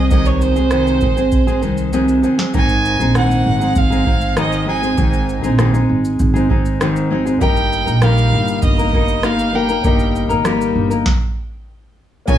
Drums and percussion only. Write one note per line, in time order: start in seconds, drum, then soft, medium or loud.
0.11 kick loud
0.11 shaker medium
0.26 shaker soft
0.41 shaker medium
0.56 shaker soft
0.71 cross-stick loud
0.71 shaker medium
0.86 cross-stick soft
0.86 shaker soft
1.01 kick medium
1.01 shaker soft
1.17 shaker medium
1.32 kick medium
1.32 shaker medium
1.48 shaker soft
1.63 shaker soft
1.77 shaker soft
1.93 shaker medium
2.08 shaker soft
2.24 shaker soft
2.39 snare medium
2.39 shaker soft
2.54 kick loud
2.54 shaker medium
2.69 shaker soft
2.85 shaker medium
3.00 shaker soft
3.15 cross-stick loud
3.15 shaker medium
3.31 shaker soft
3.62 shaker medium
3.75 kick medium
3.75 shaker medium
3.92 shaker soft
4.06 kick medium
4.21 shaker soft
4.37 cross-stick loud
4.37 shaker medium
4.52 shaker soft
4.83 shaker soft
4.98 kick loud
4.98 shaker medium
5.13 shaker soft
5.29 shaker soft
5.44 shaker medium
5.59 cross-stick loud
5.59 shaker medium
5.74 shaker medium
6.05 shaker soft
6.19 kick medium
6.19 shaker medium
6.36 shaker soft
6.50 kick medium
6.66 shaker soft
6.81 cross-stick loud
6.81 shaker medium
6.96 shaker soft
7.27 shaker soft
7.41 kick loud
7.41 shaker medium
7.57 shaker soft
7.73 shaker medium
7.87 shaker medium
8.02 cross-stick loud
8.02 shaker medium
8.18 shaker soft
8.48 shaker medium
8.62 kick medium
8.62 shaker medium
8.79 shaker medium
8.93 kick medium
9.08 shaker medium
9.23 cross-stick loud
9.23 shaker medium
9.39 shaker soft
9.69 shaker soft
9.84 kick loud
9.84 shaker medium
9.99 shaker soft
10.16 shaker medium
10.30 shaker medium
10.45 cross-stick loud
10.45 shaker medium
10.61 shaker medium
10.91 shaker medium
11.06 kick loud
11.06 snare medium
12.28 kick loud
12.28 shaker medium